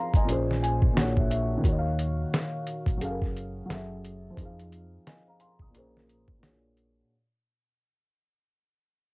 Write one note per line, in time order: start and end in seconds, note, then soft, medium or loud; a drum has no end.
0.00 0.22 F3 medium
0.00 0.23 C4 medium
0.00 0.25 D#4 medium
0.00 0.27 G#4 medium
0.00 0.29 F5 medium
0.00 0.29 A#5 medium
0.00 0.29 C6 medium
0.14 0.26 G#1 medium
0.14 0.48 D#5 soft
0.14 0.48 G#5 medium
0.14 kick medium
0.14 closed hi-hat soft
0.25 0.88 A#1 medium
0.25 0.92 A#2 medium
0.25 0.93 A#3 medium
0.25 0.96 C#4 medium
0.25 closed hi-hat medium
0.30 0.97 G#4 medium
0.30 0.98 C5 medium
0.51 snare soft
0.62 0.94 G#5 medium
0.62 closed hi-hat medium
0.82 kick medium
0.93 1.56 A#1 medium
0.93 1.63 A#2 medium
0.93 1.60 A#3 medium
0.93 1.64 D4 medium
0.93 1.16 F#5 medium
0.93 snare loud
0.98 1.63 F#4 medium
0.98 1.66 G#4 medium
0.98 1.66 C#5 medium
0.98 closed hi-hat medium
1.17 1.29 E5 medium
1.17 kick medium
1.30 1.62 E5 medium
1.30 closed hi-hat medium
1.57 2.94 D#3 medium
1.57 2.96 A#3 medium
1.64 2.24 D#2 medium
1.64 2.98 F#4 medium
1.64 kick loud
1.64 closed hi-hat medium
1.68 3.00 C#5 medium
1.68 1.76 D#5 medium
1.79 3.03 F5 medium
1.99 closed hi-hat medium
2.34 snare loud
2.34 closed hi-hat medium
2.67 closed hi-hat soft
2.86 2.98 A#1 medium
2.86 kick loud
2.86 closed hi-hat soft
2.98 3.64 F#3 medium
2.98 3.66 C#4 medium
2.98 3.68 G#4 medium
2.98 closed hi-hat medium
3.02 3.61 F#1 medium
3.02 3.10 A4 medium
3.02 3.71 F5 medium
3.10 3.73 A#4 medium
3.22 kick medium
3.22 snare soft
3.37 closed hi-hat medium
3.66 4.36 F#3 medium
3.66 4.36 C#4 medium
3.66 4.37 G#4 medium
3.70 4.29 F#1 medium
3.70 4.38 A4 medium
3.70 4.39 E5 medium
3.70 snare medium
3.70 closed hi-hat medium
4.05 closed hi-hat medium
4.30 5.67 F3 medium
4.30 5.69 C4 medium
4.37 4.97 F2 medium
4.37 5.71 D#4 medium
4.37 kick loud
4.37 closed hi-hat medium
4.41 5.73 G#4 medium
4.41 5.08 F5 medium
4.59 closed hi-hat soft
4.72 closed hi-hat medium
5.06 5.26 D#5 soft
5.06 5.26 G#5 medium
5.06 snare medium
5.06 closed hi-hat medium
5.27 5.39 F5 medium
5.27 5.39 A#5 medium
5.40 5.60 F5 medium
5.40 5.60 C6 medium
5.40 closed hi-hat medium
5.59 5.71 C2 medium
5.59 5.94 A#5 soft
5.59 5.93 D#6 medium
5.59 kick medium
5.71 6.34 A#1 medium
5.71 6.37 A#2 medium
5.71 6.39 A#3 medium
5.71 6.42 C#4 medium
5.71 closed hi-hat medium
5.76 6.43 G#4 medium
5.76 6.44 C5 medium
5.97 snare soft
6.09 closed hi-hat medium
6.28 kick medium
6.39 7.02 A#1 loud
6.39 7.08 A#2 medium
6.39 7.09 A#3 medium
6.39 7.10 D4 medium
6.43 7.11 F#4 medium
6.43 7.11 G#4 medium
6.43 7.12 C#5 medium
6.43 snare loud
6.43 closed hi-hat medium
6.77 closed hi-hat medium